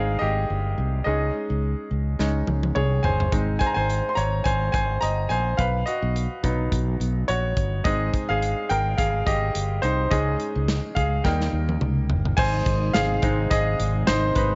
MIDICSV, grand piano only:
0, 0, Header, 1, 2, 480
1, 0, Start_track
1, 0, Key_signature, -4, "major"
1, 0, Tempo, 565931
1, 898, Time_signature, 4, 2, 24, 8
1, 12341, End_track
2, 0, Start_track
2, 0, Title_t, "Grand piano"
2, 0, Program_c, 0, 0
2, 0, Control_c, 0, 64, 127
2, 0, Note_on_c, 0, 56, 49
2, 0, Note_on_c, 0, 60, 44
2, 0, Note_on_c, 0, 63, 52
2, 0, Note_on_c, 0, 68, 61
2, 0, Note_on_c, 0, 70, 64
2, 0, Note_on_c, 0, 75, 79
2, 0, Note_on_c, 0, 77, 74
2, 0, Note_on_c, 0, 79, 77
2, 159, Note_off_c, 0, 75, 0
2, 159, Note_on_c, 0, 75, 74
2, 182, Note_on_c, 0, 67, 60
2, 860, Note_off_c, 0, 56, 0
2, 864, Note_off_c, 0, 60, 0
2, 866, Note_off_c, 0, 63, 0
2, 866, Note_off_c, 0, 67, 0
2, 872, Note_off_c, 0, 75, 0
2, 885, Note_on_c, 0, 75, 68
2, 893, Note_on_c, 0, 56, 44
2, 899, Note_on_c, 0, 61, 40
2, 905, Note_off_c, 0, 68, 0
2, 905, Note_on_c, 0, 63, 48
2, 905, Note_on_c, 0, 68, 55
2, 909, Control_c, 0, 64, 0
2, 910, Note_off_c, 0, 70, 0
2, 911, Note_off_c, 0, 79, 0
2, 915, Note_off_c, 0, 77, 0
2, 1077, Control_c, 0, 64, 127
2, 1226, Note_off_c, 0, 56, 0
2, 1229, Note_off_c, 0, 61, 0
2, 1232, Note_off_c, 0, 63, 0
2, 1338, Note_off_c, 0, 75, 0
2, 1348, Note_off_c, 0, 68, 0
2, 1859, Note_on_c, 0, 56, 41
2, 1862, Note_on_c, 0, 61, 35
2, 1866, Note_on_c, 0, 63, 46
2, 2075, Note_off_c, 0, 56, 0
2, 2076, Note_off_c, 0, 61, 0
2, 2079, Note_off_c, 0, 63, 0
2, 2333, Note_on_c, 0, 73, 73
2, 2343, Note_on_c, 0, 68, 56
2, 2388, Note_off_c, 0, 73, 0
2, 2397, Note_off_c, 0, 68, 0
2, 2568, Note_on_c, 0, 80, 75
2, 2584, Note_on_c, 0, 72, 59
2, 2814, Note_on_c, 0, 56, 46
2, 2819, Note_on_c, 0, 60, 42
2, 2824, Note_on_c, 0, 63, 47
2, 2828, Control_c, 0, 64, 0
2, 3000, Control_c, 0, 64, 127
2, 3028, Note_off_c, 0, 72, 0
2, 3033, Note_off_c, 0, 80, 0
2, 3046, Note_on_c, 0, 80, 80
2, 3063, Note_on_c, 0, 72, 62
2, 3108, Note_on_c, 0, 82, 73
2, 3121, Note_off_c, 0, 80, 0
2, 3122, Note_off_c, 0, 72, 0
2, 3146, Note_off_c, 0, 56, 0
2, 3149, Note_off_c, 0, 60, 0
2, 3151, Note_off_c, 0, 63, 0
2, 3175, Note_on_c, 0, 80, 83
2, 3183, Note_off_c, 0, 82, 0
2, 3193, Note_on_c, 0, 72, 68
2, 3469, Note_on_c, 0, 84, 63
2, 3515, Note_off_c, 0, 72, 0
2, 3522, Note_on_c, 0, 82, 86
2, 3530, Note_off_c, 0, 84, 0
2, 3539, Note_on_c, 0, 73, 66
2, 3541, Note_off_c, 0, 80, 0
2, 3753, Note_off_c, 0, 82, 0
2, 3762, Note_off_c, 0, 73, 0
2, 3766, Note_on_c, 0, 80, 83
2, 3784, Note_on_c, 0, 72, 64
2, 3993, Note_off_c, 0, 80, 0
2, 4005, Note_off_c, 0, 72, 0
2, 4005, Note_on_c, 0, 80, 77
2, 4024, Note_on_c, 0, 72, 61
2, 4245, Note_off_c, 0, 72, 0
2, 4246, Note_on_c, 0, 82, 88
2, 4259, Note_off_c, 0, 80, 0
2, 4264, Note_on_c, 0, 75, 68
2, 4484, Note_off_c, 0, 75, 0
2, 4488, Note_on_c, 0, 80, 78
2, 4500, Note_off_c, 0, 82, 0
2, 4506, Note_on_c, 0, 72, 58
2, 4543, Note_off_c, 0, 80, 0
2, 4559, Note_off_c, 0, 72, 0
2, 4727, Note_on_c, 0, 77, 76
2, 4747, Note_on_c, 0, 71, 63
2, 4749, Control_c, 0, 64, 0
2, 4874, Control_c, 0, 64, 127
2, 4966, Note_off_c, 0, 71, 0
2, 4968, Note_on_c, 0, 75, 70
2, 4980, Note_off_c, 0, 77, 0
2, 4984, Note_on_c, 0, 66, 57
2, 5455, Note_on_c, 0, 54, 49
2, 5461, Note_on_c, 0, 59, 44
2, 5466, Note_on_c, 0, 63, 50
2, 5899, Note_off_c, 0, 75, 0
2, 5907, Note_off_c, 0, 66, 0
2, 6175, Note_on_c, 0, 73, 82
2, 6189, Note_on_c, 0, 66, 62
2, 6623, Note_off_c, 0, 54, 0
2, 6623, Note_off_c, 0, 73, 0
2, 6626, Note_off_c, 0, 59, 0
2, 6628, Note_off_c, 0, 63, 0
2, 6631, Note_off_c, 0, 66, 0
2, 6652, Note_on_c, 0, 75, 84
2, 6653, Note_on_c, 0, 56, 51
2, 6659, Note_on_c, 0, 60, 43
2, 6665, Note_on_c, 0, 63, 52
2, 6667, Note_on_c, 0, 68, 65
2, 6669, Control_c, 0, 64, 0
2, 6816, Control_c, 0, 64, 127
2, 6985, Note_off_c, 0, 56, 0
2, 6989, Note_off_c, 0, 60, 0
2, 6992, Note_off_c, 0, 63, 0
2, 7011, Note_off_c, 0, 68, 0
2, 7029, Note_on_c, 0, 77, 84
2, 7041, Note_off_c, 0, 75, 0
2, 7043, Note_on_c, 0, 68, 65
2, 7352, Note_off_c, 0, 77, 0
2, 7360, Note_off_c, 0, 68, 0
2, 7374, Note_on_c, 0, 79, 89
2, 7386, Note_on_c, 0, 70, 71
2, 7606, Note_off_c, 0, 70, 0
2, 7613, Note_on_c, 0, 77, 84
2, 7623, Note_on_c, 0, 68, 65
2, 7624, Note_off_c, 0, 79, 0
2, 7839, Note_off_c, 0, 77, 0
2, 7844, Note_off_c, 0, 68, 0
2, 7857, Note_on_c, 0, 75, 81
2, 7867, Note_on_c, 0, 67, 60
2, 8310, Note_off_c, 0, 67, 0
2, 8328, Note_on_c, 0, 72, 74
2, 8341, Note_on_c, 0, 63, 57
2, 8352, Note_off_c, 0, 75, 0
2, 8563, Note_off_c, 0, 63, 0
2, 8571, Note_on_c, 0, 75, 84
2, 8572, Note_on_c, 0, 56, 44
2, 8576, Note_on_c, 0, 61, 44
2, 8581, Note_off_c, 0, 72, 0
2, 8582, Note_on_c, 0, 63, 51
2, 8583, Note_on_c, 0, 68, 63
2, 8589, Control_c, 0, 64, 0
2, 8757, Control_c, 0, 64, 127
2, 8905, Note_off_c, 0, 56, 0
2, 8907, Note_off_c, 0, 61, 0
2, 8911, Note_off_c, 0, 63, 0
2, 9261, Note_off_c, 0, 75, 0
2, 9267, Note_off_c, 0, 68, 0
2, 9288, Note_on_c, 0, 77, 75
2, 9301, Note_on_c, 0, 68, 58
2, 9516, Note_off_c, 0, 77, 0
2, 9523, Note_off_c, 0, 68, 0
2, 9534, Note_on_c, 0, 79, 70
2, 9537, Note_on_c, 0, 55, 42
2, 9542, Note_on_c, 0, 58, 43
2, 9547, Note_on_c, 0, 63, 49
2, 9548, Note_on_c, 0, 70, 55
2, 9550, Control_c, 0, 64, 0
2, 9715, Control_c, 0, 64, 127
2, 9868, Note_off_c, 0, 55, 0
2, 9871, Note_off_c, 0, 58, 0
2, 9873, Note_off_c, 0, 63, 0
2, 10222, Note_off_c, 0, 79, 0
2, 10230, Note_off_c, 0, 70, 0
2, 10489, Note_on_c, 0, 80, 100
2, 10508, Note_on_c, 0, 72, 83
2, 10509, Control_c, 0, 64, 0
2, 10681, Control_c, 0, 64, 127
2, 10940, Note_off_c, 0, 80, 0
2, 10950, Note_off_c, 0, 72, 0
2, 10971, Note_on_c, 0, 77, 94
2, 10987, Note_on_c, 0, 68, 74
2, 11214, Note_on_c, 0, 56, 57
2, 11220, Note_on_c, 0, 60, 49
2, 11226, Note_on_c, 0, 63, 60
2, 11430, Note_off_c, 0, 68, 0
2, 11455, Note_on_c, 0, 75, 89
2, 11469, Note_off_c, 0, 77, 0
2, 11469, Note_on_c, 0, 68, 71
2, 11902, Note_off_c, 0, 56, 0
2, 11903, Note_off_c, 0, 75, 0
2, 11905, Note_off_c, 0, 60, 0
2, 11908, Note_off_c, 0, 63, 0
2, 11911, Note_off_c, 0, 68, 0
2, 11934, Note_on_c, 0, 72, 93
2, 11946, Note_on_c, 0, 63, 69
2, 12166, Note_off_c, 0, 63, 0
2, 12177, Note_on_c, 0, 71, 77
2, 12184, Note_off_c, 0, 72, 0
2, 12191, Note_on_c, 0, 63, 60
2, 12341, Note_off_c, 0, 63, 0
2, 12341, Note_off_c, 0, 71, 0
2, 12341, End_track
0, 0, End_of_file